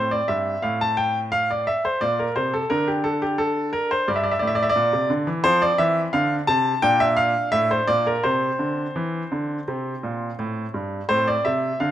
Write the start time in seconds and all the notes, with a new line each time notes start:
Already playing: A2 C4 C5
0.11 D5
0.28 G2 E5
0.62 A2 F5
0.81 A5
0.97 G5
1.32 F5
1.51 D5
1.67 E5
1.85 C5
2.01 A#2 D5
2.19 A#4
2.36 C3 C5
2.54 A4
2.70 D3 D4 A#4
2.88 G4
3.04 A4
3.22 G4
3.38 A4
3.73 A#4
3.91 C5
4.08 G2 D5
4.16 E5
4.23 D5
4.31 E5
4.39 A2 D5
4.47 E5
4.55 D5
4.63 E5
4.69 D5
4.76 A#2
4.93 C3
5.10 D3
5.27 E3
5.44 F3 C4 C5
5.62 D5
5.78 E3 E5
6.13 D3 F5
6.47 C3 A5
6.82 A#2 D4 G5
7.00 E5
7.17 F5
7.52 A2 E5
7.71 C5
7.87 A#2 D5
8.07 A#4
8.23 C3 C4 C5
8.59 D3
8.96 E3
9.32 D3
9.68 C3 C4
10.03 A#2
10.39 A2
10.74 G2
11.09 A2 C4 C5
11.28 D5
11.45 C3 E5
11.80 D3 F5